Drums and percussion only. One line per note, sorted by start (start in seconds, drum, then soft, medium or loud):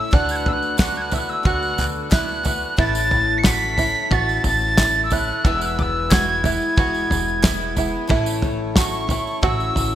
0.13 kick loud
0.13 floor tom medium
0.13 tambourine soft
0.29 tambourine medium
0.46 floor tom medium
0.46 tambourine soft
0.62 tambourine soft
0.78 kick loud
0.78 snare loud
0.78 clap medium
0.78 floor tom medium
0.78 tambourine loud
0.95 tambourine soft
1.11 floor tom medium
1.11 tambourine medium
1.29 tambourine soft
1.45 kick loud
1.45 floor tom medium
1.45 tambourine soft
1.62 tambourine soft
1.78 clap medium
1.78 floor tom medium
1.78 tambourine medium
2.11 kick loud
2.11 snare loud
2.11 clap medium
2.11 floor tom medium
2.11 tambourine loud
2.28 tambourine soft
2.45 floor tom medium
2.45 tambourine medium
2.78 kick loud
2.78 floor tom medium
2.78 tambourine soft
2.95 tambourine medium
3.11 floor tom medium
3.11 tambourine soft
3.44 kick loud
3.44 snare loud
3.44 clap loud
3.44 floor tom medium
3.44 tambourine loud
3.78 floor tom medium
3.78 tambourine medium
3.95 tambourine soft
4.11 kick loud
4.11 floor tom medium
4.11 tambourine soft
4.29 tambourine soft
4.44 floor tom medium
4.44 tambourine medium
4.61 tambourine soft
4.77 kick loud
4.77 snare loud
4.77 clap loud
4.77 floor tom loud
4.77 tambourine loud
4.95 tambourine soft
5.10 floor tom medium
5.10 tambourine medium
5.45 kick loud
5.45 floor tom medium
5.45 tambourine soft
5.61 tambourine medium
5.79 floor tom medium
5.79 tambourine soft
6.11 kick loud
6.11 snare loud
6.11 clap loud
6.11 floor tom medium
6.11 tambourine loud
6.44 floor tom loud
6.44 tambourine medium
6.62 tambourine soft
6.77 kick loud
6.77 floor tom medium
6.77 tambourine soft
6.94 tambourine soft
7.11 floor tom medium
7.11 tambourine medium
7.28 tambourine soft
7.44 kick loud
7.44 snare loud
7.44 clap medium
7.44 floor tom loud
7.44 tambourine loud
7.61 tambourine soft
7.77 floor tom medium
7.77 tambourine medium
8.09 kick loud
8.09 floor tom loud
8.09 tambourine soft
8.26 tambourine medium
8.42 floor tom medium
8.42 tambourine soft
8.76 kick loud
8.76 snare loud
8.76 clap medium
8.76 floor tom loud
8.76 tambourine loud
9.09 floor tom medium
9.09 tambourine medium
9.27 tambourine soft
9.43 kick loud
9.43 floor tom loud
9.43 tambourine soft
9.60 tambourine soft
9.76 floor tom medium
9.76 tambourine medium